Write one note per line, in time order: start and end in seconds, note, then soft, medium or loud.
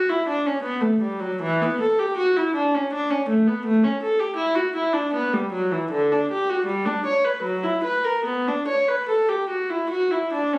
0.09 0.27 E4 medium
0.28 0.45 D4 medium
0.46 0.64 C#4 soft
0.63 0.81 B3 medium
0.81 1.00 A3 medium
1.01 1.20 G3 medium
1.20 1.40 F#3 medium
1.42 1.60 E3 medium
1.62 1.80 B3 medium
1.80 1.98 A4 medium
1.99 2.17 G4 medium
2.17 2.35 F#4 medium
2.37 2.54 E4 medium
2.55 2.72 D4 medium
2.74 2.91 C#4 medium
2.93 3.10 D4 medium
3.10 3.28 C#4 medium
3.29 3.46 A3 medium
3.47 3.64 B3 medium
3.65 3.82 A3 medium
3.84 4.01 C#4 medium
4.03 4.19 A4 medium
4.20 4.37 G4 medium
4.36 4.54 E4 medium
4.55 4.73 F#4 medium
4.75 4.92 E4 medium
4.93 5.11 D4 medium
5.14 5.31 B3 medium
5.33 5.51 G3 medium
5.52 5.70 F#3 medium
5.71 5.90 E3 medium
5.91 6.09 D3 medium
6.12 6.30 D4 medium
6.31 6.48 G4 medium
6.50 6.67 F#4 medium
6.65 6.84 G3 medium
6.86 7.04 D4 medium
7.06 7.24 C#5 medium
7.24 7.44 B4 soft
7.42 7.62 F#3 medium
7.63 7.83 E4 medium
7.83 8.03 B4 soft
8.04 8.25 A#4 soft
8.25 8.45 B3 medium
8.48 8.67 D4 soft
8.67 8.87 C#5 soft
8.88 9.08 B4 soft
9.09 9.28 A4 medium
9.29 9.49 G4 soft
9.49 9.69 F#4 soft
9.70 9.91 E4 soft
9.90 10.11 F#4 medium
10.10 10.32 E4 soft
10.33 10.54 D4 soft
10.53 10.58 C#4 soft